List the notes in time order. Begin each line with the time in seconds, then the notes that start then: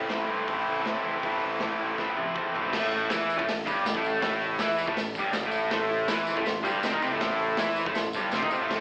Already playing: A3 C4 E4
0.09 A1 A2 E3 A3 C4 E4 A4, kick, snare, open hi-hat
0.14 C5
0.28 G2 A3 C4 E4 A4 C5
0.46 A1 E3 A3 E4 A4 C5, kick, open hi-hat
0.51 C4 E4
0.68 A1 E4 A4 C5
0.85 A2 E3 A3 E4 A4 C5, kick, snare, open hi-hat
0.90 C4 E4
1.04 E2 E4 A4 C5
1.08 A3 C4
1.23 A1 A2 E3 A3 C4 E4 A4 C5, kick, open hi-hat
1.42 A1 E4 A4 C5
1.59 A1 A2 E3 A3 C4 E4 A4 B4, kick, snare, open hi-hat
1.64 E4
1.78 A1 C4 E4 A4 C5
1.84 A3
1.98 A1 E3 A3 C4 E4 A4 C5, kick, snare
2.17 A1 E4 A4 C5, high tom
2.35 E2 E3 A3 C4 E4 A4 C5, kick, mid tom
2.53 A1 A3 C4 E4 A4 B4, floor tom
2.72 A1 A2 A3, kick, snare, crash, tambourine
3.10 E2 E3 E4, snare, open hi-hat, tambourine
3.30 tambourine
3.38 A1 A2 A3, kick
3.45 A1 A2, snare, open hi-hat
3.50 tambourine
3.66 G1 G2 G3, kick, tambourine
3.83 A1 A2, snare, tambourine
3.95 A1 A2 A3, kick
4.04 tambourine
4.21 A1 A2 A3, kick, snare, open hi-hat, tambourine
4.58 E2 E3 E4, snare, open hi-hat, tambourine
4.78 tambourine
4.87 A1 A2 A3, kick
4.97 A1 A2, snare, open hi-hat, tambourine
5.15 G1 G2, kick, tambourine
5.19 G3
5.33 A1 A2, snare, open hi-hat, tambourine
5.43 A1 A2 A3, kick
5.52 tambourine
5.71 A1 A2 A3 E4 A4 C5, kick, snare, open hi-hat, tambourine
5.90 E4 A4 C5
6.08 E2 E3 E4 A4 C5, snare, open hi-hat, tambourine
6.27 E4 A4 C5, tambourine
6.37 A1 A2 A3, kick
6.45 A1 A2 E4 A4 C5, snare, open hi-hat, tambourine
6.63 G1 G2 G3 E4 A4 C5, kick, tambourine
6.83 C2 C3 C4 E4 A4 C5, snare, open hi-hat, tambourine
6.92 D#2 D#3 D#4, kick
7.02 C2 C3 C4 E4 A4 B4, tambourine
7.13 A1 A2 A3
7.18 A1 A2 E4 A4 C5, kick, snare, open hi-hat, tambourine
7.23 A3
7.38 E4 A4 C5, tambourine
7.57 E2 E3 E4 A4 C5, snare, open hi-hat, tambourine
7.76 E4 A4 C5, tambourine
7.86 A1 A2 A3, kick
7.95 A1 A2 E4 A4 C5, snare, open hi-hat, tambourine
8.13 G1 G2 G3 E4 A4 C5 A5, kick, tambourine
8.31 C2 C3 E4 A4 C5 E5, snare, open hi-hat, tambourine
8.36 C4
8.43 D#2 D#3 D#4, kick
8.49 C2 C3 C4 E4 A4 C5 F5, tambourine
8.60 A1 A2 A3
8.68 A1 A2 A3 E4 A4 C5, kick, snare, crash